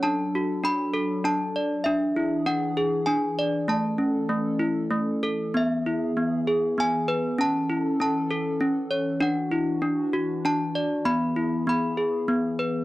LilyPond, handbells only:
\new Staff \with { instrumentName = "Handbells" } { \time 3/4 \key e \mixolydian \tempo 4 = 98 << { a''4 b''4 a''4 | e''4 fis''4 gis''4 | a''2 r4 | e''2 gis''4 |
a''4 a''4. r8 | fis''2 a''4 | b''4 b''4. r8 | } \\ { d'8 fis'8 d'8 a'8 d'8 d''8 | d'8 e'8 d'8 gis'8 d'8 d''8 | a8 cis'8 a8 e'8 a8 a'8 | b8 e'8 b8 gis'8 b8 b'8 |
cis'8 e'8 cis'8 a'8 cis'8 cis''8 | d'8 e'8 d'8 fis'8 d'8 d''8 | b8 e'8 b8 gis'8 b8 b'8 | } >> }